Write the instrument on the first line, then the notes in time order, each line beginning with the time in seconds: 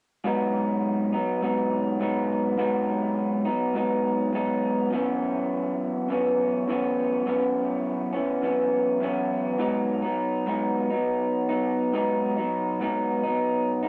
clean electric guitar
0.24 G#2 F#3 B3 D#4
1.12 F#3 B3 D#4
1.41 G#2 F#3 B3 D#4
2.00 G#2 F#3 B3 D#4
2.57 G#2 F#3 B3 D#4
3.45 F#3 B3 D#4
3.74 G#2 F#3 B3 D#4
4.33 G#2 F#3 B3 D#4
4.91 F#2 E3 B3
4.96 C#4
6.09 F#2 E3 B3 C#4
6.68 F#2 E3 B3 C#4
7.26 F#2 E3 B3 C#4
8.13 E3 B3 C#4
8.42 F#2 E3 B3 C#4
9.00 F#2 E3 B3 C#4
9.58 G#2 F#3 B3 D#4
10.02 F#3 B3 D#4
10.46 G#2 F#3 B3 D#4
10.90 F#3 B3 D#4
11.49 F#3 B3 D#4
11.93 G#2 F#3 B3 D#4
12.37 F#3 B3 D#4
12.80 G#2 F#3 B3 D#4
13.23 F#3 B3 D#4
13.83 B3 D#4